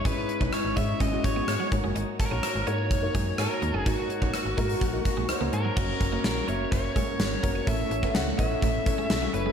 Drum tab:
CC |----------------|----------------|----------------|x---------------|
HH |x-x-x-x-x-x-x-x-|x-x-x-x-x-x-x-x-|x-x-x-xxx-x-x-x-|--x-x-x-x-x-x-x-|
SD |----r-------r---|----r-------r---|----r-------r---|----o-------o---|
BD |o--o--o-o-o---o-|--o-----o-o-----|o--o--o-o-o-----|o-o-----o-o---o-|

CC |----------------|
HH |x-x-x-x-x-x-x-x-|
SD |----o-------o---|
BD |o--o--o-o-o-----|